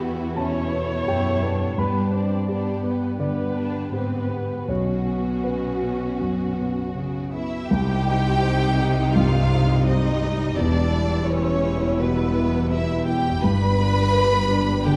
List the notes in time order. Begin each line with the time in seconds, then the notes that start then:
Already playing: E2 B3 E4 G4 B4 B5
0.00 B3 E4 F#4
0.36 B2 C#4 E4 A4 C#5 A5
0.71 B3
1.06 F#2 E4 G4 G5
1.42 B3 D4 E4
1.78 G2 G3 B3 D4 G4 B4 B5
2.12 C4 B4 D5
2.48 B3 D4 G4 D5
2.83 B3 D4 B4
3.19 D3 B3 G4 B4 D5
3.54 B3 D4
3.92 G#2 C4 G4 B4
4.29 B3 D4
4.67 B1 B2 C#4 F#4 C#5
5.06 B3
5.44 F#4 B4
5.82 B3 C#4
6.20 F#2 F#3
6.58 B3
6.96 C#3 F#4
7.33 B3 C#4 E4 E5
7.69 C2 C3 G3 D#4 G4 G5
8.07 D#4
8.43 C5
8.78 D#4 G4
9.13 G2 G3 F4 F5
9.51 D#4
9.84 D#4 C5 D#5
10.23 D#4 G4
10.57 E1 E2 D4 E4 D5
10.93 E4
11.29 C#4 B4 C#5
11.65 E4 G4
12.00 B2 B3 B4
12.36 E4
12.71 E4 B4 E5
13.06 E4 G4 G5
13.43 G1 G2 G3 D4 B4 B5
13.79 D4
14.15 B4
14.50 D4 G4
14.86 D3 G4 G5